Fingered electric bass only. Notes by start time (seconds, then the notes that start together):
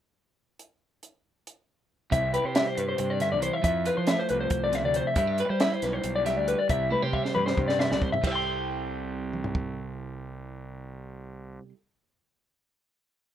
2.12 C2
2.45 C3
2.78 G2
3.00 G2
3.33 C2
3.64 F2
3.98 F3
4.30 C2
4.51 C2
4.85 D2
5.16 G2
5.50 G3
5.83 B1
6.04 B1
6.37 D2
6.70 C2
7.03 C3
7.36 G2
7.57 G2
7.91 C2
8.24 C2